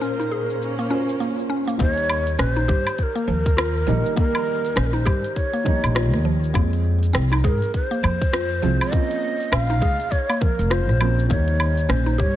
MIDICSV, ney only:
0, 0, Header, 1, 2, 480
1, 0, Start_track
1, 0, Tempo, 594059
1, 1454, Time_signature, 4, 2, 24, 8
1, 9987, End_track
2, 0, Start_track
2, 0, Title_t, "Ney"
2, 0, Program_c, 0, 77
2, 0, Note_on_c, 0, 70, 89
2, 950, Note_off_c, 0, 70, 0
2, 1464, Note_on_c, 0, 72, 122
2, 1561, Note_off_c, 0, 72, 0
2, 1561, Note_on_c, 0, 73, 122
2, 1932, Note_on_c, 0, 72, 105
2, 1944, Note_off_c, 0, 73, 0
2, 2420, Note_off_c, 0, 72, 0
2, 2420, Note_on_c, 0, 72, 93
2, 2449, Note_on_c, 0, 70, 101
2, 2457, Note_off_c, 0, 72, 0
2, 3370, Note_off_c, 0, 70, 0
2, 3375, Note_on_c, 0, 70, 106
2, 3856, Note_on_c, 0, 72, 90
2, 3868, Note_off_c, 0, 70, 0
2, 3926, Note_on_c, 0, 70, 80
2, 3938, Note_off_c, 0, 72, 0
2, 3990, Note_on_c, 0, 72, 97
2, 4002, Note_off_c, 0, 70, 0
2, 4326, Note_on_c, 0, 73, 91
2, 4338, Note_off_c, 0, 72, 0
2, 5050, Note_off_c, 0, 73, 0
2, 6021, Note_on_c, 0, 72, 80
2, 6048, Note_on_c, 0, 70, 87
2, 6056, Note_off_c, 0, 72, 0
2, 6241, Note_off_c, 0, 70, 0
2, 6262, Note_on_c, 0, 72, 100
2, 7217, Note_on_c, 0, 75, 111
2, 7229, Note_off_c, 0, 72, 0
2, 7699, Note_on_c, 0, 77, 107
2, 7711, Note_off_c, 0, 75, 0
2, 8170, Note_on_c, 0, 73, 95
2, 8183, Note_off_c, 0, 77, 0
2, 8416, Note_on_c, 0, 70, 92
2, 8429, Note_off_c, 0, 73, 0
2, 8660, Note_on_c, 0, 72, 89
2, 8672, Note_off_c, 0, 70, 0
2, 9127, Note_off_c, 0, 72, 0
2, 9132, Note_on_c, 0, 73, 101
2, 9622, Note_on_c, 0, 72, 87
2, 9634, Note_off_c, 0, 73, 0
2, 9861, Note_on_c, 0, 73, 94
2, 9873, Note_off_c, 0, 72, 0
2, 9987, Note_off_c, 0, 73, 0
2, 9987, End_track
0, 0, End_of_file